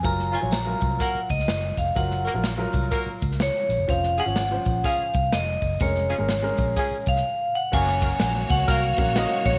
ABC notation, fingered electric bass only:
X:1
M:4/4
L:1/16
Q:"Swing" 1/4=125
K:Gblyd
V:1 name="Fingered electric bass" clef=bass
G,,,3 B,,,3 C,,2 z2 D,,2 G,,,2 F,,,2 | G,,,3 B,,,3 C,,2 z2 D,,3 z B,,, G,,, | F,,,3 A,,,3 B,,,2 z2 C,,2 F,,,2 G,,,2 | F,,,3 A,,,3 B,,,2 z2 C,,2 z4 |
G,,,4 B,,,2 D,,2 C,,2 B,,,3 z B,,, F,,, |]